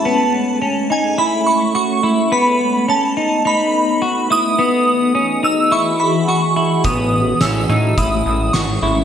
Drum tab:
HH |--------|--------|--------|x-x-x-x-|
SD |--------|--------|--------|--o---o-|
BD |--------|--------|--------|o---o---|